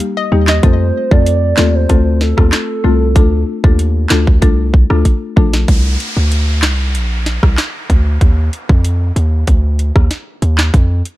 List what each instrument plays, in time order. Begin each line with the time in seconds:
0.00 closed hi-hat
0.17 synth pluck D#5
0.32 808-style bass D#2, marimba G3 A#3 D#4 G4
0.47 synth pluck D#5, snare, clap
0.63 808-style bass F2, marimba A3 C4 F4 A4, soft synth lead C5, kick, closed hi-hat
1.11 808-style bass F2, marimba A3 C4 F4 A4, soft synth lead D5, kick
1.26 closed hi-hat
1.57 808-style bass D#2, marimba A3 C4 F4 A4, snare, clap
1.75 soft synth lead C5
1.89 808-style bass D2, marimba A3 C4 F4 A4, kick, closed hi-hat
2.21 soft synth lead A4, snare
2.37 808-style bass D#2, marimba A3 C4 F4 A4, kick, cross-stick
2.52 soft synth lead A4, snare, clap, closed hi-hat
2.84 808-style bass C2, marimba A3 C4 F4 A4
3.15 808-style bass D2, marimba A3 D4 F4 A4, kick, closed hi-hat
3.64 808-style bass D#2, marimba A3 D4 F4 A4, kick
3.79 closed hi-hat
4.09 808-style bass D2, marimba A3 D4 F4 A4, snare, clap
4.27 kick
4.42 808-style bass C2, marimba A3 D4 F4 A4, kick, closed hi-hat
4.74 kick
4.90 808-style bass D2, marimba A3 D4 F4 A4, cross-stick
5.05 kick, closed hi-hat
5.37 808-style bass A#1, marimba A3 D4 F4 A4, kick
5.54 snare
5.68 808-style bass C2, kick, closed hi-hat, downlifter
6.00 closed hi-hat
6.17 808-style bass D2
6.32 closed hi-hat
6.62 808-style bass C2, snare, clap, closed hi-hat
6.95 808-style bass A#1, closed hi-hat
7.26 snare, closed hi-hat
7.43 808-style bass C2, kick, cross-stick
7.57 snare, clap, closed hi-hat
7.90 808-style bass D2, kick, closed hi-hat
8.21 808-style bass D#2, kick, closed hi-hat
8.53 closed hi-hat
8.69 808-style bass F2, kick
8.85 closed hi-hat
9.16 808-style bass D#2, closed hi-hat
9.47 808-style bass D2, kick, closed hi-hat
9.79 closed hi-hat
9.96 808-style bass D#2, kick, cross-stick
10.11 snare, closed hi-hat
10.42 808-style bass D#2, closed hi-hat
10.58 snare, clap
10.74 808-style bass F2, kick, closed hi-hat
11.05 closed hi-hat